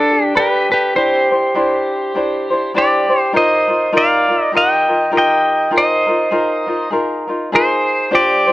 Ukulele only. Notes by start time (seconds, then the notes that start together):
Already playing: D4 G4 A4 B4
0.11 D4 G4 A4
0.35 D4 G4 A4 B4
0.70 D4 G4 A4
0.95 D4 E4 G4 C5
1.31 D4 E4 C5
1.55 D4 E4 G4 C5
2.15 D4 E4 G4 C5
2.50 D4 E4 C5
2.74 D4 E4 G4 C5
3.09 D4 E4 C5
3.33 D#4 F4 G4 A#4
3.68 D#4 F4 A#4
3.92 D#4 F4 G4 A#4
4.29 D#4 F4 A#4
4.52 D#4 F4 G4 A#4
4.88 D#4 F4 A#4
5.12 D#4 F4 G4 A#4
5.71 D#4 F4 G#4 A#4
6.07 D#4 F4 A#4
6.31 D#4 F4 G#4 A#4
6.67 D#4 F4 A#4
6.91 D#4 F4 G#4 A#4
7.27 D#4 F4 A#4
7.52 D#4 F4 G#4 A#4
8.11 D4 F4 G4 C5
8.47 D4 F4 C5